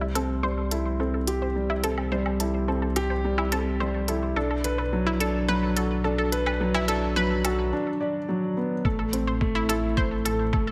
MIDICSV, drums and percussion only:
0, 0, Header, 1, 2, 480
1, 0, Start_track
1, 0, Tempo, 560748
1, 1816, Time_signature, 4, 2, 24, 8
1, 9173, End_track
2, 0, Start_track
2, 0, Title_t, "Drums"
2, 132, Note_on_c, 9, 42, 55
2, 218, Note_off_c, 9, 42, 0
2, 611, Note_on_c, 9, 42, 63
2, 697, Note_off_c, 9, 42, 0
2, 1091, Note_on_c, 9, 42, 60
2, 1177, Note_off_c, 9, 42, 0
2, 1572, Note_on_c, 9, 42, 59
2, 1657, Note_off_c, 9, 42, 0
2, 1692, Note_on_c, 9, 77, 58
2, 1777, Note_off_c, 9, 77, 0
2, 1933, Note_on_c, 9, 77, 60
2, 2019, Note_off_c, 9, 77, 0
2, 2054, Note_on_c, 9, 42, 57
2, 2140, Note_off_c, 9, 42, 0
2, 2535, Note_on_c, 9, 42, 62
2, 2535, Note_on_c, 9, 77, 56
2, 2620, Note_off_c, 9, 42, 0
2, 2620, Note_off_c, 9, 77, 0
2, 2894, Note_on_c, 9, 77, 65
2, 2980, Note_off_c, 9, 77, 0
2, 3013, Note_on_c, 9, 42, 61
2, 3099, Note_off_c, 9, 42, 0
2, 3494, Note_on_c, 9, 42, 57
2, 3580, Note_off_c, 9, 42, 0
2, 3975, Note_on_c, 9, 42, 57
2, 4060, Note_off_c, 9, 42, 0
2, 4456, Note_on_c, 9, 42, 59
2, 4541, Note_off_c, 9, 42, 0
2, 4935, Note_on_c, 9, 42, 58
2, 5021, Note_off_c, 9, 42, 0
2, 5414, Note_on_c, 9, 42, 60
2, 5499, Note_off_c, 9, 42, 0
2, 5534, Note_on_c, 9, 77, 66
2, 5619, Note_off_c, 9, 77, 0
2, 5775, Note_on_c, 9, 77, 66
2, 5860, Note_off_c, 9, 77, 0
2, 5893, Note_on_c, 9, 42, 59
2, 5978, Note_off_c, 9, 42, 0
2, 6373, Note_on_c, 9, 42, 64
2, 6373, Note_on_c, 9, 77, 64
2, 6459, Note_off_c, 9, 42, 0
2, 6459, Note_off_c, 9, 77, 0
2, 7575, Note_on_c, 9, 36, 104
2, 7660, Note_off_c, 9, 36, 0
2, 7816, Note_on_c, 9, 42, 62
2, 7902, Note_off_c, 9, 42, 0
2, 8056, Note_on_c, 9, 36, 103
2, 8141, Note_off_c, 9, 36, 0
2, 8299, Note_on_c, 9, 42, 64
2, 8384, Note_off_c, 9, 42, 0
2, 8537, Note_on_c, 9, 36, 104
2, 8622, Note_off_c, 9, 36, 0
2, 8779, Note_on_c, 9, 42, 65
2, 8865, Note_off_c, 9, 42, 0
2, 9017, Note_on_c, 9, 36, 111
2, 9102, Note_off_c, 9, 36, 0
2, 9173, End_track
0, 0, End_of_file